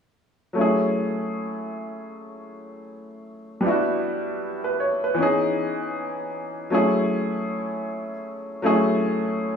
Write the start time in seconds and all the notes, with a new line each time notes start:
0.53 F#3 A3 C#4
0.59 E4 G#4
3.61 G3 B3 D4
3.66 E4 F#4
4.64 B4
4.80 C#5
5.04 B4
5.14 E3 B3
5.19 C#4 D#4 G#4
6.70 F#3 A3 C#4 E4
6.74 G#4
8.62 F#3 A3 C#4 E4 G#4